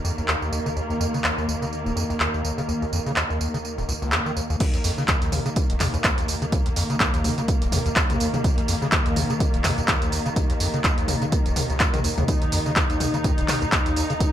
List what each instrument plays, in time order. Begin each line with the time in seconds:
Already playing: string section D#2 D#3 A#3
0.04 acid bass F2, tambourine
0.18 acid bass D#2, tambourine
0.28 acid bass D#2, clap, tambourine
0.42 acid bass D#2, tambourine
0.52 acid bass D#2, tambourine
0.66 acid bass C#3, tambourine
0.76 acid bass D#2, tambourine
0.90 acid bass D#2, tambourine
1.00 acid bass F2, tambourine
1.14 acid bass C#3, tambourine
1.24 acid bass D#2, clap, tambourine
1.38 acid bass D#2, tambourine
1.48 acid bass D#2, tambourine
1.62 acid bass C#3, tambourine
1.73 tambourine
1.86 acid bass D#1, tambourine
1.96 acid bass F2, tambourine
2.10 acid bass D#2, tambourine
2.20 acid bass D#2, clap, tambourine
2.34 acid bass D#2, tambourine
2.44 acid bass D#2, tambourine
2.58 acid bass C#3, tambourine
2.68 acid bass D#2, tambourine
2.82 acid bass D#2, tambourine
2.93 acid bass F2, tambourine
3.06 acid bass C#3, tambourine
3.16 acid bass D#2, clap, tambourine
3.30 acid bass D#2, tambourine
3.41 acid bass D#2, tambourine
3.54 acid bass C#3, tambourine
3.65 tambourine
3.78 acid bass D#1, tambourine
3.88 acid bass C#2, tambourine
4.02 acid bass C#2, tambourine
4.12 acid bass F2, clap, tambourine
4.26 acid bass D#3, tambourine
4.36 acid bass D#2, tambourine
4.50 acid bass D#2, tambourine
4.60 acid bass D#2, string section D#2 D#3 A#3, kick, closed hi-hat, crash, tambourine
4.74 acid bass D#2, closed hi-hat, tambourine
4.84 acid bass F2, open hi-hat, tambourine
4.98 acid bass C#3, tambourine
5.08 acid bass D#2, kick, clap, closed hi-hat, tambourine
5.22 acid bass D#2, closed hi-hat, tambourine
5.32 acid bass D#2, open hi-hat, mid tom, tambourine
5.46 acid bass C#3, closed hi-hat, tambourine
5.56 kick, closed hi-hat, tambourine
5.70 acid bass D#1, closed hi-hat, tambourine
5.80 acid bass F2, clap, open hi-hat, mid tom, tambourine
5.94 acid bass D#2, closed hi-hat, tambourine
6.04 acid bass D#2, kick, clap, closed hi-hat, tambourine
6.18 acid bass D#2, closed hi-hat, tambourine
6.28 acid bass D#2, open hi-hat, tambourine
6.42 acid bass C#3, closed hi-hat, tambourine
6.52 acid bass D#2, kick, closed hi-hat, tambourine
6.66 acid bass D#2, closed hi-hat, tambourine
6.76 acid bass F2, open hi-hat, tambourine
6.90 acid bass C#3, closed hi-hat, tambourine
7.00 acid bass D#2, kick, clap, closed hi-hat, tambourine
7.14 acid bass D#2, closed hi-hat, tambourine
7.24 acid bass D#2, open hi-hat, mid tom, tambourine
7.38 acid bass C#3, closed hi-hat, tambourine
7.48 kick, closed hi-hat, tambourine
7.62 acid bass D#1, closed hi-hat, tambourine
7.72 acid bass F2, open hi-hat, mid tom, tambourine
7.86 acid bass D#2, closed hi-hat, tambourine
7.96 acid bass D#2, kick, clap, closed hi-hat, tambourine
8.10 acid bass D#2, closed hi-hat, mid tom, tambourine
8.20 acid bass D#2, open hi-hat, tambourine
8.34 acid bass C#3, closed hi-hat, mid tom, tambourine
8.44 acid bass D#2, kick, closed hi-hat, tambourine
8.58 acid bass D#2, closed hi-hat, tambourine
8.68 acid bass F2, open hi-hat, tambourine
8.82 acid bass C#3, tambourine
8.92 acid bass D#2, kick, clap, closed hi-hat, tambourine
9.06 acid bass D#2, closed hi-hat, tambourine
9.16 acid bass D#2, open hi-hat, mid tom, tambourine
9.30 acid bass C#3, closed hi-hat, tambourine
9.40 kick, closed hi-hat, tambourine
9.54 acid bass D#1, closed hi-hat, tambourine
9.64 acid bass F2, clap, open hi-hat, mid tom, tambourine
9.78 acid bass D#2, closed hi-hat, tambourine
9.88 acid bass D#2, kick, clap, closed hi-hat, tambourine
10.02 acid bass D#2, closed hi-hat, tambourine
10.12 acid bass D#2, open hi-hat, tambourine
10.26 acid bass C#3, closed hi-hat, tambourine
10.36 acid bass D#2, kick, closed hi-hat, tambourine
10.50 acid bass D#2, closed hi-hat, tambourine
10.60 acid bass F2, open hi-hat, tambourine
10.74 acid bass C#3, closed hi-hat, tambourine
10.84 acid bass D#2, kick, clap, closed hi-hat, tambourine
10.98 acid bass D#2, closed hi-hat, tambourine
11.08 acid bass D#2, open hi-hat, mid tom, tambourine
11.22 acid bass C#3, closed hi-hat, tambourine
11.32 kick, closed hi-hat, tambourine
11.46 acid bass D#1, closed hi-hat, tambourine
11.56 acid bass C#2, open hi-hat, mid tom, tambourine
11.70 acid bass C#2, closed hi-hat, tambourine
11.80 acid bass F2, kick, clap, closed hi-hat, tambourine
11.94 acid bass D#3, closed hi-hat, mid tom, tambourine
12.04 acid bass D#2, open hi-hat, tambourine
12.18 acid bass D#2, closed hi-hat, mid tom, tambourine
12.28 acid bass D#2, string section D#4, kick, closed hi-hat, tambourine
12.42 acid bass D#2, closed hi-hat, tambourine
12.52 acid bass F2, open hi-hat, tambourine
12.66 acid bass C#3, tambourine
12.76 acid bass D#2, kick, clap, closed hi-hat, tambourine
12.90 acid bass D#2, closed hi-hat, tambourine
13.00 acid bass D#2, open hi-hat, mid tom, tambourine
13.14 acid bass C#3, closed hi-hat, tambourine
13.24 acid bass F2, kick, closed hi-hat, tambourine
13.38 acid bass D#1, closed hi-hat, tambourine
13.48 clap, open hi-hat, mid tom, tambourine
13.62 acid bass D#2, closed hi-hat, tambourine
13.72 acid bass D#2, kick, clap, closed hi-hat, tambourine
13.86 acid bass D#2, closed hi-hat, tambourine
13.96 acid bass D#2, open hi-hat, tambourine
14.10 acid bass C#3, closed hi-hat, tambourine
14.20 acid bass D#2, kick, closed hi-hat, tambourine